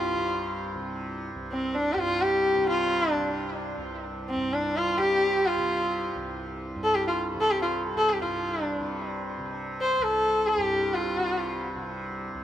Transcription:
0.00 1.35 C2 medium
0.00 1.95 G2 medium
0.00 0.15 C3 medium
0.00 0.59 F4 medium
0.15 0.75 C3 medium
0.75 2.56 C3 medium
1.35 3.77 C2 medium
1.52 1.77 C4 medium
1.75 1.94 D4 medium
1.93 4.36 G2 medium
1.93 2.00 G4 medium
1.99 2.23 F4 loud
2.22 2.68 G4 loud
2.56 3.17 C3 medium
2.69 3.13 F4 medium
3.13 4.96 C3 medium
3.13 3.34 D4 medium
3.77 6.15 C2 medium
4.29 4.55 C4 medium
4.36 6.75 G2 medium
4.53 4.78 D4 medium
4.77 5.00 F4 loud
4.96 5.57 C3 medium
4.96 5.47 G4 loud
5.46 6.15 F4 medium
5.57 7.34 C3 medium
6.16 9.98 C2 medium
6.76 8.20 G2 medium
6.84 6.96 A4 medium
6.94 7.06 G4 medium
7.07 7.18 F4 medium
7.34 7.95 C3 medium
7.41 7.52 A4 loud
7.51 7.61 G4 medium
7.62 7.73 F4 medium
7.95 8.80 C3 medium
7.95 8.11 A4 loud
8.10 8.21 G4 medium
8.20 10.57 G2 medium
8.20 8.65 F4 medium
8.65 8.85 D4 medium
8.80 9.38 C3 medium
9.38 11.17 C3 medium
9.81 9.95 C5 medium
9.95 12.34 C2 medium
9.95 10.04 C5 medium
10.03 10.50 A4 loud
10.48 10.95 G4 medium
10.57 12.44 G2 medium
10.94 11.61 F4 medium
11.17 11.76 C3 medium
11.76 12.44 C3 medium
12.35 12.44 C2 medium

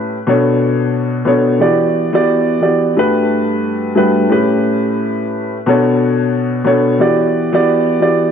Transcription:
0.00 0.16 A2 medium
0.00 0.16 A3 medium
0.00 0.17 C#4 medium
0.00 0.17 G4 medium
0.00 0.17 B4 loud
0.27 1.21 B2 loud
0.27 1.21 B3 medium
0.27 1.21 D4 medium
0.27 1.22 A4 medium
0.27 1.22 C#5 loud
1.25 1.60 B2 medium
1.25 1.58 B3 medium
1.25 1.60 D4 medium
1.25 1.61 A4 medium
1.25 1.61 C#5 loud
1.59 2.08 E3 medium
1.59 2.08 B3 medium
1.59 2.09 F#4 medium
1.59 2.09 G4 medium
1.59 2.09 D5 medium
2.12 2.58 E3 medium
2.12 2.58 B3 medium
2.12 2.58 F#4 medium
2.12 2.59 G4 medium
2.12 2.59 D5 loud
2.60 2.92 E3 medium
2.60 2.93 B3 medium
2.60 2.93 F#4 medium
2.60 2.93 G4 medium
2.60 2.94 D5 medium
2.97 3.90 G2 loud
2.97 3.90 G3 medium
2.97 3.91 A3 medium
2.97 3.91 F#4 medium
2.97 3.91 B4 loud
3.95 4.30 G2 loud
3.95 4.30 G3 medium
3.95 4.29 A3 medium
3.95 4.30 F#4 medium
3.95 4.31 B4 loud
4.29 5.55 A2 loud
4.29 5.56 A3 medium
4.29 5.56 C#4 medium
4.29 5.56 G4 medium
4.29 5.57 B4 loud
5.66 6.60 B2 loud
5.66 6.60 B3 medium
5.66 6.61 D4 medium
5.66 6.61 A4 medium
5.66 6.61 C#5 loud
6.64 6.99 B2 medium
6.64 6.98 B3 medium
6.64 7.00 D4 medium
6.64 7.00 A4 medium
6.64 7.00 C#5 loud
6.99 7.48 E3 medium
6.99 7.48 B3 medium
6.99 7.48 F#4 medium
6.99 7.49 G4 medium
6.99 7.49 D5 loud
7.52 7.97 E3 medium
7.52 7.98 B3 loud
7.52 7.98 F#4 medium
7.52 7.98 G4 medium
7.52 7.99 D5 loud
8.00 8.32 E3 medium
8.00 8.32 B3 medium
8.00 8.32 F#4 medium
8.00 8.32 G4 medium
8.00 8.32 D5 medium

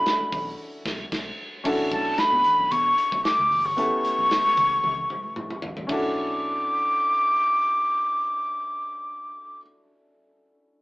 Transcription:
0.00 0.56 C#4 medium
0.00 0.57 D4 medium
0.00 0.57 E4 medium
0.00 0.57 F#4 medium
0.00 0.57 A4 medium
0.00 0.55 B5 medium
0.06 snare loud
0.06 closed hi-hat medium
0.21 high conga medium
0.32 0.54 B1 medium
0.32 kick medium
0.32 open hi-hat medium
0.32 low conga medium
0.85 1.04 B1 loud
0.85 kick loud
0.85 snare loud
0.85 crash medium
1.12 1.30 B1 loud
1.12 kick loud
1.12 snare loud
1.12 crash medium
1.64 1.87 B1 loud
1.64 3.73 C#4 medium
1.64 3.73 D4 medium
1.64 3.74 E4 medium
1.64 3.74 F#4 medium
1.64 3.74 A4 loud
1.64 kick loud
1.64 crash loud
1.64 muted conga soft
1.91 2.13 B1 medium
1.91 2.20 A5 medium
1.91 kick medium
1.91 closed hi-hat medium
1.91 high conga medium
2.18 2.73 B5 loud
2.18 muted fingered electric bass stroke soft
2.18 snare loud
2.18 closed hi-hat medium
2.32 2.42 B2 loud
2.32 high conga medium
2.44 closed hi-hat medium
2.44 high conga medium
2.44 low conga medium
2.59 2.69 B1 medium
2.71 2.93 B2 loud
2.71 3.24 C#6 loud
2.71 kick medium
2.71 closed hi-hat medium
2.71 muted conga soft
2.71 low conga medium
2.98 closed hi-hat medium
2.98 muted conga soft
3.11 3.22 B1 medium
3.11 kick medium
3.11 high conga medium
3.24 3.67 D6 loud
3.24 snare loud
3.24 closed hi-hat medium
3.38 3.48 C#2 medium
3.38 high conga medium
3.51 3.65 F#1 loud
3.51 open hi-hat medium
3.51 muted conga soft
3.51 low conga medium
3.65 3.75 G1 medium
3.65 5.63 C#6 loud
3.77 3.89 A1 medium
3.77 5.85 B3 medium
3.77 5.85 C#4 medium
3.77 5.86 E4 medium
3.77 5.86 G4 medium
3.77 5.87 A4 medium
3.77 closed hi-hat loud
4.04 closed hi-hat medium
4.04 high conga medium
4.19 4.40 B1 medium
4.31 snare loud
4.31 closed hi-hat medium
4.46 high conga medium
4.57 4.79 C#2 medium
4.57 kick medium
4.57 closed hi-hat medium
4.57 muted conga soft
4.57 high conga medium
4.57 low conga medium
4.84 5.05 C#2 medium
4.84 high tom medium
4.84 low conga medium
5.10 mid tom medium
5.10 muted conga soft
5.23 high conga medium
5.36 5.49 A2 medium
5.36 mid tom medium
5.36 muted conga soft
5.50 mid tom medium
5.50 high conga medium
5.62 5.75 A1 medium
5.62 floor tom loud
5.62 low conga medium
5.77 5.87 A1 medium
5.77 floor tom medium
5.87 9.60 B1 medium
5.87 9.58 C#4 medium
5.87 9.59 D4 medium
5.87 9.60 E4 medium
5.87 9.61 F#4 medium
5.87 9.61 D6 medium
5.87 kick loud
5.87 crash medium
5.87 high conga medium
5.92 9.62 A4 medium

